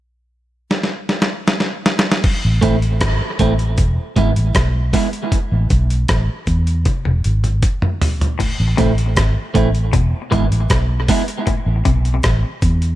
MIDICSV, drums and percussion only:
0, 0, Header, 1, 2, 480
1, 0, Start_track
1, 0, Key_signature, 0, "minor"
1, 0, Tempo, 769231
1, 1398, Time_signature, 4, 2, 24, 8
1, 8083, End_track
2, 0, Start_track
2, 0, Title_t, "Drums"
2, 442, Note_on_c, 9, 38, 54
2, 504, Note_off_c, 9, 38, 0
2, 521, Note_on_c, 9, 38, 55
2, 583, Note_off_c, 9, 38, 0
2, 680, Note_on_c, 9, 38, 60
2, 743, Note_off_c, 9, 38, 0
2, 760, Note_on_c, 9, 38, 82
2, 823, Note_off_c, 9, 38, 0
2, 921, Note_on_c, 9, 38, 85
2, 983, Note_off_c, 9, 38, 0
2, 1000, Note_on_c, 9, 38, 74
2, 1062, Note_off_c, 9, 38, 0
2, 1160, Note_on_c, 9, 38, 88
2, 1222, Note_off_c, 9, 38, 0
2, 1242, Note_on_c, 9, 38, 101
2, 1304, Note_off_c, 9, 38, 0
2, 1320, Note_on_c, 9, 38, 89
2, 1382, Note_off_c, 9, 38, 0
2, 1396, Note_on_c, 9, 49, 91
2, 1398, Note_on_c, 9, 36, 118
2, 1459, Note_off_c, 9, 49, 0
2, 1460, Note_off_c, 9, 36, 0
2, 1637, Note_on_c, 9, 42, 77
2, 1639, Note_on_c, 9, 36, 95
2, 1700, Note_off_c, 9, 42, 0
2, 1701, Note_off_c, 9, 36, 0
2, 1762, Note_on_c, 9, 42, 52
2, 1824, Note_off_c, 9, 42, 0
2, 1876, Note_on_c, 9, 42, 87
2, 1879, Note_on_c, 9, 36, 121
2, 1880, Note_on_c, 9, 37, 124
2, 1938, Note_off_c, 9, 42, 0
2, 1942, Note_off_c, 9, 36, 0
2, 1943, Note_off_c, 9, 37, 0
2, 2116, Note_on_c, 9, 42, 64
2, 2118, Note_on_c, 9, 36, 78
2, 2179, Note_off_c, 9, 42, 0
2, 2180, Note_off_c, 9, 36, 0
2, 2240, Note_on_c, 9, 42, 47
2, 2303, Note_off_c, 9, 42, 0
2, 2356, Note_on_c, 9, 42, 90
2, 2358, Note_on_c, 9, 36, 106
2, 2419, Note_off_c, 9, 42, 0
2, 2421, Note_off_c, 9, 36, 0
2, 2598, Note_on_c, 9, 42, 59
2, 2599, Note_on_c, 9, 36, 99
2, 2661, Note_off_c, 9, 36, 0
2, 2661, Note_off_c, 9, 42, 0
2, 2722, Note_on_c, 9, 42, 52
2, 2785, Note_off_c, 9, 42, 0
2, 2837, Note_on_c, 9, 42, 98
2, 2838, Note_on_c, 9, 36, 118
2, 2843, Note_on_c, 9, 37, 117
2, 2899, Note_off_c, 9, 42, 0
2, 2901, Note_off_c, 9, 36, 0
2, 2906, Note_off_c, 9, 37, 0
2, 3078, Note_on_c, 9, 36, 85
2, 3080, Note_on_c, 9, 46, 76
2, 3140, Note_off_c, 9, 36, 0
2, 3142, Note_off_c, 9, 46, 0
2, 3201, Note_on_c, 9, 42, 48
2, 3263, Note_off_c, 9, 42, 0
2, 3319, Note_on_c, 9, 36, 104
2, 3320, Note_on_c, 9, 42, 77
2, 3381, Note_off_c, 9, 36, 0
2, 3382, Note_off_c, 9, 42, 0
2, 3558, Note_on_c, 9, 42, 73
2, 3559, Note_on_c, 9, 36, 94
2, 3621, Note_off_c, 9, 42, 0
2, 3622, Note_off_c, 9, 36, 0
2, 3684, Note_on_c, 9, 42, 50
2, 3746, Note_off_c, 9, 42, 0
2, 3796, Note_on_c, 9, 42, 96
2, 3800, Note_on_c, 9, 36, 119
2, 3801, Note_on_c, 9, 37, 115
2, 3859, Note_off_c, 9, 42, 0
2, 3862, Note_off_c, 9, 36, 0
2, 3863, Note_off_c, 9, 37, 0
2, 4037, Note_on_c, 9, 42, 63
2, 4039, Note_on_c, 9, 36, 80
2, 4100, Note_off_c, 9, 42, 0
2, 4101, Note_off_c, 9, 36, 0
2, 4162, Note_on_c, 9, 42, 48
2, 4224, Note_off_c, 9, 42, 0
2, 4277, Note_on_c, 9, 42, 84
2, 4279, Note_on_c, 9, 36, 112
2, 4279, Note_on_c, 9, 48, 56
2, 4339, Note_off_c, 9, 42, 0
2, 4341, Note_off_c, 9, 36, 0
2, 4341, Note_off_c, 9, 48, 0
2, 4401, Note_on_c, 9, 48, 48
2, 4463, Note_off_c, 9, 48, 0
2, 4520, Note_on_c, 9, 42, 59
2, 4582, Note_off_c, 9, 42, 0
2, 4641, Note_on_c, 9, 47, 57
2, 4643, Note_on_c, 9, 42, 56
2, 4703, Note_off_c, 9, 47, 0
2, 4705, Note_off_c, 9, 42, 0
2, 4758, Note_on_c, 9, 42, 92
2, 4759, Note_on_c, 9, 36, 107
2, 4820, Note_off_c, 9, 42, 0
2, 4822, Note_off_c, 9, 36, 0
2, 4881, Note_on_c, 9, 45, 84
2, 4943, Note_off_c, 9, 45, 0
2, 5001, Note_on_c, 9, 43, 101
2, 5002, Note_on_c, 9, 46, 81
2, 5064, Note_off_c, 9, 43, 0
2, 5065, Note_off_c, 9, 46, 0
2, 5126, Note_on_c, 9, 42, 52
2, 5126, Note_on_c, 9, 43, 79
2, 5188, Note_off_c, 9, 42, 0
2, 5188, Note_off_c, 9, 43, 0
2, 5241, Note_on_c, 9, 36, 114
2, 5243, Note_on_c, 9, 42, 85
2, 5243, Note_on_c, 9, 49, 92
2, 5303, Note_off_c, 9, 36, 0
2, 5305, Note_off_c, 9, 42, 0
2, 5305, Note_off_c, 9, 49, 0
2, 5479, Note_on_c, 9, 42, 76
2, 5481, Note_on_c, 9, 36, 90
2, 5541, Note_off_c, 9, 42, 0
2, 5543, Note_off_c, 9, 36, 0
2, 5603, Note_on_c, 9, 42, 53
2, 5666, Note_off_c, 9, 42, 0
2, 5719, Note_on_c, 9, 42, 94
2, 5721, Note_on_c, 9, 36, 116
2, 5723, Note_on_c, 9, 37, 125
2, 5781, Note_off_c, 9, 42, 0
2, 5783, Note_off_c, 9, 36, 0
2, 5786, Note_off_c, 9, 37, 0
2, 5959, Note_on_c, 9, 36, 88
2, 5959, Note_on_c, 9, 42, 65
2, 6022, Note_off_c, 9, 36, 0
2, 6022, Note_off_c, 9, 42, 0
2, 6082, Note_on_c, 9, 42, 46
2, 6144, Note_off_c, 9, 42, 0
2, 6198, Note_on_c, 9, 42, 90
2, 6199, Note_on_c, 9, 36, 104
2, 6260, Note_off_c, 9, 42, 0
2, 6262, Note_off_c, 9, 36, 0
2, 6439, Note_on_c, 9, 36, 94
2, 6441, Note_on_c, 9, 42, 60
2, 6502, Note_off_c, 9, 36, 0
2, 6503, Note_off_c, 9, 42, 0
2, 6564, Note_on_c, 9, 42, 55
2, 6626, Note_off_c, 9, 42, 0
2, 6676, Note_on_c, 9, 42, 105
2, 6678, Note_on_c, 9, 36, 121
2, 6683, Note_on_c, 9, 37, 117
2, 6739, Note_off_c, 9, 42, 0
2, 6740, Note_off_c, 9, 36, 0
2, 6745, Note_off_c, 9, 37, 0
2, 6917, Note_on_c, 9, 36, 91
2, 6917, Note_on_c, 9, 46, 86
2, 6979, Note_off_c, 9, 46, 0
2, 6980, Note_off_c, 9, 36, 0
2, 7038, Note_on_c, 9, 42, 57
2, 7101, Note_off_c, 9, 42, 0
2, 7156, Note_on_c, 9, 42, 84
2, 7157, Note_on_c, 9, 36, 120
2, 7218, Note_off_c, 9, 42, 0
2, 7220, Note_off_c, 9, 36, 0
2, 7396, Note_on_c, 9, 42, 80
2, 7398, Note_on_c, 9, 36, 92
2, 7459, Note_off_c, 9, 42, 0
2, 7460, Note_off_c, 9, 36, 0
2, 7520, Note_on_c, 9, 42, 48
2, 7582, Note_off_c, 9, 42, 0
2, 7633, Note_on_c, 9, 42, 86
2, 7638, Note_on_c, 9, 36, 124
2, 7638, Note_on_c, 9, 37, 125
2, 7696, Note_off_c, 9, 42, 0
2, 7700, Note_off_c, 9, 36, 0
2, 7700, Note_off_c, 9, 37, 0
2, 7876, Note_on_c, 9, 36, 93
2, 7876, Note_on_c, 9, 42, 66
2, 7938, Note_off_c, 9, 42, 0
2, 7939, Note_off_c, 9, 36, 0
2, 7999, Note_on_c, 9, 42, 47
2, 8061, Note_off_c, 9, 42, 0
2, 8083, End_track
0, 0, End_of_file